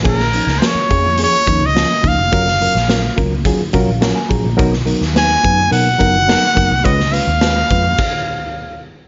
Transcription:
<<
  \new Staff \with { instrumentName = "Trumpet" } { \time 4/4 \key ais \phrygian \tempo 4 = 106 ais'8.~ ais'32 bis'32 cis''4 cis''8. dis''8. eis''8~ | eis''4. r2 r8 | r4 gis''4 fis''2 | dis''8 eis''2. r8 | }
  \new Staff \with { instrumentName = "Reed electric piano" } { \time 4/4 \key ais \phrygian << { r1 | r2 r8 eis''8 fis''16 gis''16 ais''8 | r1 | r1 | } \\ { <eis ais cis' gis'>16 r16 <eis ais cis' dis'>16 r16 <eis ais cis' ais'>16 r16 <eis ais cis' gis'>16 r16 <eis ais cis' gis'>16 r16 <eis ais cis' dis'>16 r16 <eis ais cis' eis'>16 r16 <eis ais cis' dis'>16 r16 | <fis cis' eis' ais'>16 r16 <fis cis' eis' ais'>16 r16 <fis cis' eis' ais'>16 r16 <fis cis' eis' ais'>16 r16 <fis cis' eis' gis'>16 r16 <fis cis' eis' ais'>16 r16 <fis cis' eis' ais'>16 r16 <fis cis' eis' gis'>16 r16 | <fis b dis' ais'>16 r16 <fis b dis' ais'>16 r16 <fis b dis' b'>16 r16 <fis b dis' b'>16 r16 <fis b dis' ais'>16 r16 <fis b dis' ais'>16 r16 <fis b dis' ais'>16 r16 <fis b dis' ais'>16 r16 | <gis cis' eis' b'>16 r16 <gis cis' eis' b'>16 r16 <gis cis' eis' b'>16 r16 <gis cis' eis' b'>16 r2 r16 | } >> }
  \new Staff \with { instrumentName = "Picked electric bass" } { \clef bass \time 4/4 \key ais \phrygian ais,,8. cis,16 r8 eis,8. r16 dis,16 cis,8 r16 cis,16 eis,,16 | fis,,8. ais,,8. cis,8. r16 b,,16 ais,,8 r16 ais,,16 ais,,16 | b,,8. dis,8. fis,8 b,8 fis,,8. r16 fis,,16 bis,,16 | cis,8. dis,8. eis,8 r2 | }
  \new DrumStaff \with { instrumentName = "Drums" } \drummode { \time 4/4 <cymc bd>16 sn16 hh16 sn16 <hh sn>8 <hh bd>8 hh8 <hh bd>8 <hh sn>8 <hh bd>8 | <hh bd>16 sn16 hh16 sn16 <hh sn>8 <hh bd>8 <hh bd>8 <hh bd>8 <hh sn>8 <hh bd>8 | <hh bd>16 sn16 hh16 sn16 <hh sn>8 <hh bd>8 hh8 <hh bd>8 <hh sn>8 <hh bd>8 | <hh bd>16 sn16 hh8 <hh sn>8 <hh bd>8 <cymc bd>4 r4 | }
>>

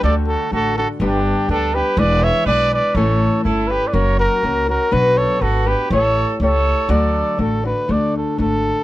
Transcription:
<<
  \new Staff \with { instrumentName = "Trumpet" } { \time 2/4 \key d \major \tempo 4 = 122 d''8 a'8 a'8 a'8 | g'4 a'8 b'8 | d''8 e''8 d''8 d''8 | cis''4 a'8 b'16. d''32 |
cis''8 ais'4 ais'8 | b'8 cis''8 a'8 b'8 | cis''4 cis''4 | d''4 a'8 b'8 |
d''8 a'8 a'4 | }
  \new Staff \with { instrumentName = "Trumpet" } { \time 2/4 \key d \major a'8 fis'8 fis'8 fis'8 | d'4 d'8 g'8 | b'8 cis''8 b'8 b'8 | a'4 e'8 g'16. b'32 |
ais'8 fis'4 fis'8 | fis'8 a'8 fis'8 g'8 | a'4 a'4 | a'4. r8 |
r2 | }
  \new Staff \with { instrumentName = "Nylon-string guitar" } { \time 2/4 \key d \major <d a d' fis' a'>4 <a d' fis' a'>8 <d' fis' a'>8 | <g, d g b d' g'>4 <g b d' g'>8 <g b d' g'>8 | <e gis b d' gis'>4 <gis b d' gis'>4 | <a, e a cis' e' a'>4 <a cis' e' a'>4 |
<fis ais cis' fis' ais'>4 <ais cis' fis' ais'>8 <cis' fis' ais'>8 | <b, fis b d' fis' b'>4 <b d' fis' b'>8 <b d' fis' b'>8 | <a e' g' cis''>4 <a e' g' cis''>4 | <d fis a d' fis' d''>4 <a d' fis' d''>8 <a d' fis' d''>8 |
<d a d' fis' a'>4 <a d' fis' a'>4 | }
  \new Staff \with { instrumentName = "Upright bass" } { \clef bass \time 2/4 \key d \major d,4 a,,4 | g,,4 d,4 | e,,4 b,,4 | a,,4 g,,4 |
fis,,4 cis,4 | b,,4 gis,,4 | a,,4 cis,4 | d,4 a,,4 |
d,4 gis,,4 | }
>>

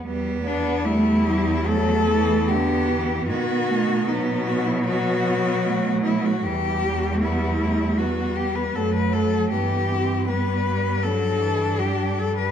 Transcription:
<<
  \new Staff \with { instrumentName = "Cello" } { \time 4/4 \key e \minor \tempo 4 = 77 r8 d'8 e'4 a'4 g'4 | fis'4 dis'8 fis'16 e'16 fis'4. e'16 fis'16 | g'4 e'4 fis'8 g'16 b'16 a'16 b'16 a'8 | g'4 b'4 a'4 g'8 a'16 b'16 | }
  \new Staff \with { instrumentName = "Cello" } { \time 4/4 \key e \minor b4 g4 a4 b4 | b8 a8 b4 b4 a4 | g4 g4 b4 a4 | b8 c'8 b8 b8 d'2 | }
  \new Staff \with { instrumentName = "Cello" } { \clef bass \time 4/4 \key e \minor g8 b8 a8 g8 fis8 e8 d8 e8 | dis4 fis2. | e8 g8 b8 a8 g4 fis4 | e4 g4 fis8 e8 g4 | }
  \new Staff \with { instrumentName = "Cello" } { \clef bass \time 4/4 \key e \minor e,1 | b,1 | e,2. fis,4 | g,1 | }
>>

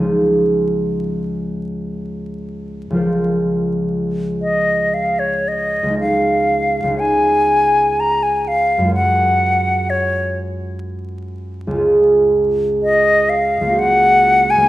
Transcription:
<<
  \new Staff \with { instrumentName = "Flute" } { \time 3/4 \key des \major \tempo 4 = 62 r2. | r4. ees''8 f''16 des''16 ees''8 | f''4 aes''4 bes''16 aes''16 f''8 | ges''4 des''8 r4. |
r4 ees''8 f''8 ges''8. aes''16 | }
  \new Staff \with { instrumentName = "Harp" } { \time 3/4 \key des \major <des, f ees' aes' c''>2. | <des, f f' bes' c''>2. | <des, aes ees' aes' des''>4 <des, aes ees' aes' des''>2 | <ges, aes f' bes' des''>2. |
<des, aes f' aes' des''>2 <des, bes f' ges' c''>4 | }
>>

